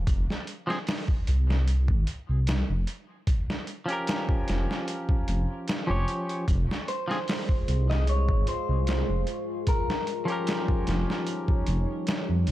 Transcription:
0.07 detuned saw bass F1, kick, closed hi-hat
0.30 snare
0.47 closed hi-hat
0.67 clean electric guitar F3 C4 G#4, snare
0.87 snare, open hi-hat
1.08 kick
1.27 detuned saw bass C2, closed hi-hat
1.50 snare
1.68 closed hi-hat
1.88 detuned saw bass G#1, kick
2.07 closed hi-hat
2.29 detuned saw bass C2
2.47 snare, closed hi-hat
2.69 detuned saw bass F1
2.87 closed hi-hat
3.27 kick, closed hi-hat
3.50 snare
3.67 closed hi-hat
3.86 clean electric guitar F3 C#4, closed hi-hat
3.90 clean electric guitar G4 A#4
4.07 snare, closed hi-hat
4.29 kick
4.48 detuned saw bass F1, snare, closed hi-hat
4.71 snare
4.88 closed hi-hat
5.09 kick
5.28 detuned saw bass F1, closed hi-hat
5.68 snare, closed hi-hat
5.87 detuned saw bass F1, clean electric guitar F3 C#4 G4 C#5
6.08 closed hi-hat
6.29 closed hi-hat
6.48 detuned saw bass F1, ambient pad G#3 F4 G#4, kick, closed hi-hat
6.71 snare
6.88 clean electric guitar C5, closed hi-hat
7.08 clean electric guitar F3 C4 G#4, snare
7.28 snare, open hi-hat
7.49 kick
7.68 detuned saw bass C2, closed hi-hat
7.90 clean electric guitar D#5, snare
8.07 clean electric guitar C#5, closed hi-hat
8.29 detuned saw bass G#1, kick
8.47 clean electric guitar C5, closed hi-hat
8.69 detuned saw bass C2
8.87 snare, closed hi-hat
9.09 detuned saw bass F1
9.27 closed hi-hat
9.67 ambient pad G3 D#4 C#5, clean electric guitar A#4, kick, closed hi-hat
9.90 snare
10.07 closed hi-hat
10.25 clean electric guitar F3 C#4, closed hi-hat
10.30 clean electric guitar G4 A#4
10.47 snare, closed hi-hat
10.68 kick
10.87 detuned saw bass F1, snare, closed hi-hat
11.10 snare
11.27 closed hi-hat
11.48 kick
11.67 detuned saw bass F1, closed hi-hat
12.07 snare, closed hi-hat
12.29 detuned saw bass F2
12.47 detuned saw bass C2, closed hi-hat

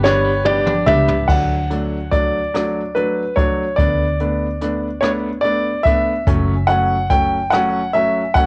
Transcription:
Already playing: fingered electric bass G1, clean electric guitar D4 G4, grand piano B4
0.03 upright piano G3 B3 D4, clean electric guitar B3, grand piano C#5, snare
0.24 clean electric guitar B3
0.45 upright piano G3 B3 D4, clean electric guitar G4, grand piano D5, high tom
0.66 clean electric guitar D4, mid tom
0.86 fingered electric bass C#2, upright piano G3 B3 D4, clean electric guitar G4, grand piano E5, mid tom
1.08 clean electric guitar B3, floor tom
1.28 fingered electric bass D2, upright piano F#3 A3 D4, grand piano F#5, kick, crash
1.70 upright piano F#3 A3 D4, closed hi-hat
2.12 upright piano F#3 A3 D4, grand piano D5, kick, closed hi-hat
2.54 upright piano F#3 A3 D4, cross-stick, closed hi-hat
2.95 upright piano F#3 A3 D4, grand piano B4, closed hi-hat
3.36 upright piano F#3 A3 D4, grand piano C#5, kick, closed hi-hat
3.76 fingered electric bass D2, upright piano A3 B3 D4, grand piano D5, kick, closed hi-hat
4.20 upright piano A3 B3 D4, closed hi-hat
4.61 upright piano A3 B3 D4, cross-stick, closed hi-hat
5.01 upright piano A3 B3 D4, grand piano C#5, cross-stick, closed hi-hat
5.41 upright piano A3 B3 D4, grand piano D5, closed hi-hat
5.83 upright piano A3 B3 D4, grand piano E5, kick, closed hi-hat
6.27 fingered electric bass F#1, upright piano F#3 A3 C#4, kick, closed hi-hat
6.67 upright piano F#3 A3 C#4, grand piano F#5, closed hi-hat
7.10 upright piano F#3 A3 C#4, grand piano G5, kick, closed hi-hat
7.50 upright piano F#3 A3 C#4, grand piano F#5, cross-stick, closed hi-hat
7.93 upright piano F#3 A3 C#4, grand piano E5, closed hi-hat
8.34 upright piano F#3 A3 C#4, grand piano F#5, kick, closed hi-hat

